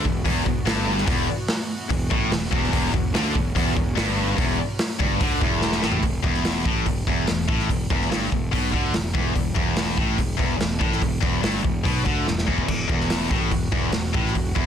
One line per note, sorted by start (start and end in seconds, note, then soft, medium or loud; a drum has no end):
0.00 6.00 E3 medium
0.00 2.70 B3 medium
0.00 6.00 F#4 medium
0.04 0.24 E1 medium
0.04 0.21 E2 medium
0.04 kick medium
0.25 0.45 E1 loud
0.25 0.44 E2 loud
0.25 kick loud
0.25 open hi-hat medium
0.45 0.65 E1 medium
0.45 0.62 E2 medium
0.45 kick medium
0.65 1.05 G1 loud
0.65 1.06 G2 loud
0.65 snare loud
0.65 open hi-hat medium
0.98 snare soft
1.06 1.27 E1 medium
1.06 1.27 E2 loud
1.06 kick loud
1.06 open hi-hat medium
1.48 snare loud
1.48 open hi-hat medium
1.90 2.10 E1 medium
1.90 2.07 E2 medium
1.90 kick loud
1.90 open hi-hat medium
2.10 2.30 A1 medium
2.10 2.31 A2 loud
2.10 kick loud
2.31 2.51 E1 medium
2.31 2.48 E2 medium
2.31 snare loud
2.31 open hi-hat medium
2.51 2.72 E1 loud
2.51 2.71 E2 loud
2.51 kick loud
2.64 snare soft
2.72 2.93 E1 medium
2.72 2.93 E2 loud
2.72 6.01 C#4 medium
2.72 kick loud
2.72 open hi-hat medium
2.93 3.13 E1 medium
2.93 3.11 E2 medium
2.93 kick loud
3.14 3.34 D2 loud
3.14 3.35 D3 loud
3.14 snare loud
3.14 open hi-hat medium
3.34 3.55 E1 medium
3.34 3.51 E2 medium
3.34 kick loud
3.55 3.75 E1 loud
3.55 3.74 E2 loud
3.55 kick loud
3.55 open hi-hat medium
3.75 3.96 E1 medium
3.75 3.92 E2 medium
3.75 kick medium
3.95 4.36 G1 loud
3.95 4.35 G2 loud
3.95 snare loud
3.95 open hi-hat medium
4.36 4.58 E1 loud
4.36 4.57 E2 loud
4.36 kick loud
4.36 open hi-hat medium
4.79 snare loud
4.79 open hi-hat medium
4.99 5.20 G1 medium
4.99 5.20 G2 loud
4.99 kick loud
5.20 5.40 D2 loud
5.20 5.41 D3 loud
5.20 kick loud
5.20 open hi-hat medium
5.40 5.80 E1 medium
5.40 5.82 E2 loud
5.40 kick loud
5.62 snare medium
5.72 snare medium
5.81 6.02 A1 medium
5.81 6.02 A2 loud
5.81 snare loud
5.92 floor tom loud
6.01 6.23 E1 medium
6.01 6.19 E2 medium
6.01 kick medium
6.01 open hi-hat medium
6.23 6.63 E1 medium
6.23 6.65 E2 loud
6.23 kick loud
6.34 snare soft
6.45 snare loud
6.45 open hi-hat medium
6.64 6.85 A1 medium
6.64 6.85 A2 loud
6.64 kick loud
6.86 7.06 E1 medium
6.86 7.03 E2 medium
6.86 kick medium
6.86 open hi-hat medium
7.07 7.27 E1 medium
7.07 7.27 E2 medium
7.07 kick loud
7.27 7.48 E1 medium
7.27 7.45 E2 medium
7.27 snare loud
7.27 open hi-hat medium
7.48 7.68 A1 medium
7.48 7.69 A2 loud
7.48 kick loud
7.59 snare soft
7.69 7.89 E1 medium
7.69 7.86 E2 medium
7.69 kick medium
7.69 open hi-hat medium
7.90 8.09 E1 medium
7.90 8.11 E2 loud
7.90 kick loud
8.01 snare soft
8.09 8.30 G1 medium
8.09 8.31 G2 medium
8.09 snare loud
8.09 open hi-hat medium
8.31 8.51 E1 medium
8.31 8.48 E2 medium
8.31 kick medium
8.52 8.72 B1 loud
8.52 8.72 B2 loud
8.52 kick loud
8.52 open hi-hat medium
8.72 8.93 D2 medium
8.72 8.93 D3 loud
8.72 kick loud
8.94 9.14 E1 medium
8.94 9.11 E2 medium
8.94 snare loud
8.94 open hi-hat medium
9.14 9.34 E1 loud
9.14 9.35 E2 loud
9.14 kick loud
9.35 9.55 E1 medium
9.35 9.53 E2 medium
9.35 kick medium
9.35 open hi-hat medium
9.55 9.95 E1 medium
9.55 9.97 E2 loud
9.55 kick loud
9.76 snare loud
9.76 open hi-hat medium
9.97 10.17 A1 medium
9.97 10.18 A2 medium
9.97 kick loud
10.16 10.38 E1 medium
10.16 10.34 E2 medium
10.16 kick medium
10.16 open hi-hat medium
10.37 10.59 E1 medium
10.37 10.56 E2 medium
10.37 kick medium
10.57 10.80 E1 medium
10.57 10.76 E2 medium
10.57 snare loud
10.57 open hi-hat medium
10.79 11.01 A1 medium
10.79 11.00 A2 loud
10.79 kick loud
10.92 snare soft
11.01 11.21 E1 medium
11.01 11.18 E2 medium
11.01 kick medium
11.01 open hi-hat medium
11.21 11.42 E1 medium
11.21 11.42 E2 loud
11.21 kick loud
11.42 11.63 G1 medium
11.42 11.62 G2 medium
11.42 snare loud
11.42 open hi-hat medium
11.63 11.84 E1 medium
11.63 11.80 E2 medium
11.63 kick medium
11.84 12.05 B1 medium
11.84 12.04 B2 medium
11.84 kick loud
11.84 open hi-hat medium
12.05 12.25 D2 medium
12.05 12.26 D3 medium
12.05 kick loud
12.25 12.47 E1 medium
12.25 12.43 E2 medium
12.25 snare medium
12.38 snare medium
12.47 12.67 E1 medium
12.47 12.66 E2 loud
12.47 kick medium
12.58 kick medium
12.67 12.88 E1 medium
12.67 12.85 E2 medium
12.67 14.66 E3 medium
12.67 14.66 B3 medium
12.67 14.66 F#4 medium
12.67 kick medium
12.67 crash medium
12.88 13.28 E1 medium
12.88 13.30 E2 loud
12.88 kick loud
13.01 snare soft
13.10 snare loud
13.10 open hi-hat medium
13.29 13.50 A1 medium
13.29 13.50 A2 loud
13.29 kick loud
13.51 13.71 E1 medium
13.51 13.68 E2 medium
13.51 kick medium
13.51 open hi-hat medium
13.72 13.92 E1 medium
13.72 13.91 E2 medium
13.72 kick loud
13.92 14.14 E1 medium
13.92 14.10 E2 medium
13.92 snare loud
13.92 open hi-hat medium
14.13 14.34 A1 medium
14.13 14.34 A2 medium
14.13 kick loud
14.26 snare soft
14.35 14.54 E1 medium
14.35 14.52 E2 medium
14.35 kick medium
14.35 open hi-hat medium
14.55 14.66 E1 medium
14.55 14.66 E2 loud
14.55 kick loud